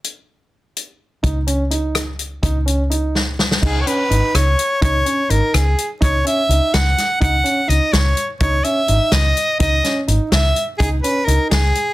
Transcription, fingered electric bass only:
X:1
M:5/8
L:1/16
Q:1/4=126
K:C#dor
V:1 name="Fingered electric bass" clef=bass
z8 z2 | C,,8- C,,2 | C,,8- C,,2 | C,,2 z2 G,,, z C,,2 z2 |
C,,2 z2 G,,, z C,,2 z2 | C,,2 z2 C,, z C,,2 z2 | C,,2 z2 C,, z C,,2 z2 | C,,2 z2 G,,, z C,,2 z2 |
C,,2 z2 G,,, z C,,2 z2 | C,,2 z2 C,, z C,,2 z2 |]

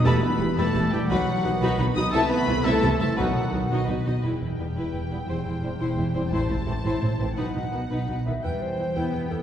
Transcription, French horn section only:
X:1
M:6/8
L:1/8
Q:3/8=115
K:Em
V:1 name="French horn section"
A, B,2 A,2 G, | F,4 z ^D | A, B,2 A,2 A, | F,3 z3 |
z6 | z6 | z6 | z6 |
z6 |]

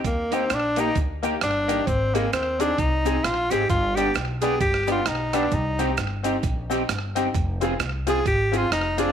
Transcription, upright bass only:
X:1
M:4/4
L:1/8
Q:"Swing" 1/4=132
K:Cm
V:1 name="Upright bass" clef=bass
E,,2 B,,,2 D,,2 G,,,2 | A,,,2 E,,2 C,,2 B,,, A,,, | G,,,2 =B,,,2 G,,,2 B,,,2 | C,,2 G,,,2 B,,,2 G,,,2 |
F,,,2 C,,2 A,,,2 F,,,2 |]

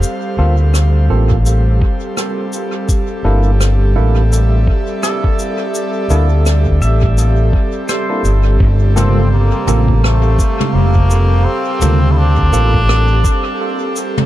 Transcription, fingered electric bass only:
X:1
M:4/4
L:1/8
Q:"Swing 16ths" 1/4=84
K:Gdor
V:1 name="Fingered electric bass" clef=bass
z D,,2 A,,,2 z3 | z G,,,2 A,,,2 z3 | z D,,2 A,,,2 z2 G,,, | G,,,2 z A,,,2 z F,,,2 |
z D,,2 A,,,2 z3 |]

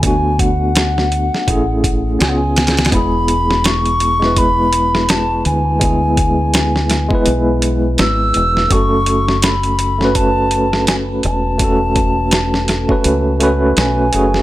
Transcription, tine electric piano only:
X:1
M:4/4
L:1/16
Q:"Swing 16ths" 1/4=83
K:Emix
V:1 name="Tine electric piano"
[A,B,DF]8 [A,CEG]4 [B,C^EG]4 | [G,B,EG]6- [G,B,EG] [G,B,EB]8- [G,B,EB] | [G,B,EG]6- [G,B,EG] [G,B,EB]8- [G,B,EB] | [A,CFA]6- [A,CFA] [A,CFB]8- [A,CFB] |
[A,CFA]6- [A,CFA] [A,CFB]3 [A,CFB]4 [A,CFG]2 |]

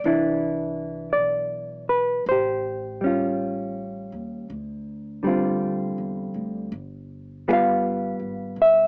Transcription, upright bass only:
X:1
M:4/4
L:1/8
Q:"Swing" 1/4=54
K:C
V:1 name="Upright bass" clef=bass
C,,2 B,,,2 A,,,3 _E,, | D,,2- (3D,, E,, D,, G,,,2- (3G,,, _A,,, B,,, |]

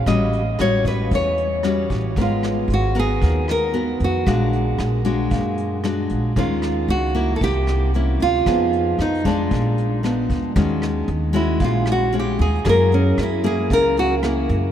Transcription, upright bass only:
X:1
M:4/4
L:1/8
Q:1/4=114
K:Ebm
V:1 name="Upright bass" clef=bass
=A,,,2 A,,,2 =E,,3 A,,, | A,,,2 A,,,2 E,,3 F,, | B,,,2 B,,,2 ^F,,3 B,,, | E,,2 D,,2 =C,,3 =D,, |
F,,2 F,,2 B,,,3 =D,, | E,,2 E,,2 B,,,3 E,, | G,,2 G,,2 D,,3 G,, |]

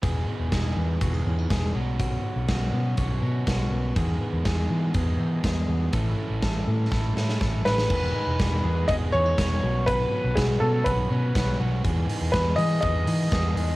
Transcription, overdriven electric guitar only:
X:1
M:4/4
L:1/8
Q:1/4=122
K:E
V:1 name="Overdriven electric guitar"
[E,,B,,E,B,DG]2 [E,B,DG]2 [E,,B,,E,B,DG]3 [B,,F,B,CF]- | [B,,F,B,CF]2 [F,B,CF]2 [B,,F,B,CF] [B,CF]3 | [E,,B,,D,G,B,G]2 [D,G,B,G]2 [E,,B,,D,G,B,G]4 | [A,,E,A,CE]4 [A,,E,A,CE] [A,CE]3 |
[E,,B,,D,G,B,G] [D,G,B,G] [E,,B,,D,G,B,G] [D,G,B,G] [D,G,B,G] [D,G,B,G] [E,,B,,D,G,B,G] [B,CF] | [B,,F,B,CF] [B,CF] [B,,F,B,CF] [B,CF] [F,B,CF] [B,CF] [B,,F,B,CF] [B,CF] | [E,,B,,D,G,B,G] [D,G,B,G] [E,,B,,D,G,B,G] [D,G,B,G] [D,G,B,G] [D,G,B,G] [E,,B,,D,G,B,G] [D,G,B,G] |]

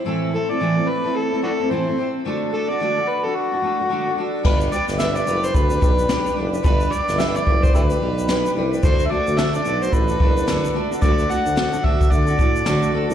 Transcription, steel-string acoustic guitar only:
X:1
M:4/4
L:1/16
Q:"Swing 16ths" 1/4=110
K:G
V:1 name="Steel-string acoustic guitar"
[A,,E,A,CEA]2 [A,CEA] [A,CEA] [A,,E,A,CEA] [A,CEA]2 [A,CEA]2 [A,CEA] [A,CEA] [A,CEA] [A,,E,A,CEA] [A,CEA] [A,CEA]2 | [D,A,DFA]2 [A,DFA] [DFA] [D,A,DFA] [DFA]2 [DFA]2 [DFA] [A,DFA] [DFA] [D,A,DFA] [DFA] [A,DFA]2 | [G,DGB]2 [G,DGB]2 [G,DGB] [DGB] [G,DGB]3 [DGB] [G,DGB]2 [G,DGB]2 [G,DGB] [DGB] | [G,DGB]2 [G,DGB]2 [G,DGB] [DGB] [G,DGB]3 [DGB] [G,DGB]2 [G,DGB]2 [G,DGB] [DGB] |
[D,A,DFA]2 [A,DFA]2 [D,A,DFA] [DFA] [A,DFA]3 [DFA] [A,DFA]2 [D,A,DFA]2 [A,DFA] [DFA] | [D,A,DFA]2 [A,DFA]2 [D,A,DFA] [DFA] [A,DFA]3 [DFA] [A,DFA]2 [D,A,DFA]2 [A,DFA] [DFA] |]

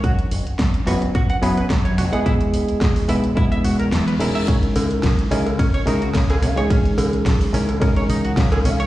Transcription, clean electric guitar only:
X:1
M:4/4
L:1/16
Q:"Swing 16ths" 1/4=108
K:C#dor
V:1 name="Clean electric guitar"
F z4 z F z F f G B F, c F f | E z4 z E z E e F A E, B E e | C z4 z C z C c D F C, G C c | C z4 z C z C c D F C, G C c |]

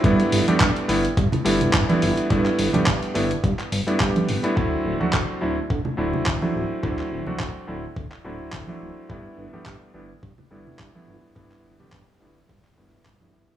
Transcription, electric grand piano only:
X:1
M:4/4
L:1/16
Q:"Swing 16ths" 1/4=106
K:G
V:1 name="Electric grand piano"
[G,A,B,DE]3 [G,A,B,DG]3 [G,A,B,DE] z3 [G,A,B,DE]3 [G,A,B,DE]3 | [G,A,B,DE]3 [G,A,B,DG]3 [G,A,B,DE] z4 [G,A,B,DE] [G,A,B,DG]3 [G,A,B,DE] | [F,A,CDE]3 [F,A,CDF]3 [F,A,CDE] z3 [F,A,CDE]3 [F,A,CDE]3 | [F,A,CDE]3 [F,A,CDF]3 [F,A,CDE] z3 [F,A,CDE]3 [F,A,CDE]3 |
[G,A,B,DE]3 [G,A,B,DG]3 [G,A,B,DE] z3 [G,A,B,DE]3 [G,A,B,DE]3 | [G,A,B,DE]3 [G,A,B,DG]3 [G,A,B,DE] z3 [G,A,B,DE]3 [G,A,B,DE]3 |]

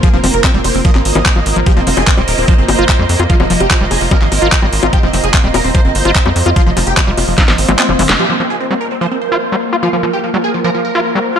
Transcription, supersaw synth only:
X:1
M:4/4
L:1/16
Q:1/4=147
K:Fm
V:1 name="Supersaw synth"
A C C B C C c C e C e4- e z | G C C A C C B C c C c4- c z | F F, F, G F, F, A F, B F, B4- B z | G C C A C C B C c C c4- c z |
F F, F, G F, F, F F, E F, C4- C z | G C C A C C B C c C c4- c z | F F, F, G F, F, A F, B F, B4- B z |]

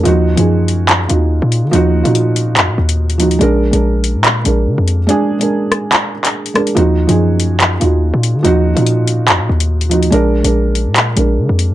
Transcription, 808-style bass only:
X:1
M:4/4
L:1/16
Q:1/4=143
K:Ebm
V:1 name="808-style bass" clef=bass
E,,3 G,,6- G,, E,,3 B,,2 E, | E,,3 B,,4- B,, F,, B,, E,,6 | B,,,3 B,,,4 B,,3 B,,,2 =D, F,,3 | z16 |
E,,3 G,,6- G,, E,,3 B,,2 E, | E,,3 B,,4- B,, F,, B,, E,,6 | B,,,3 B,,,4 B,,3 B,,,2 =D, F,,2 B,, |]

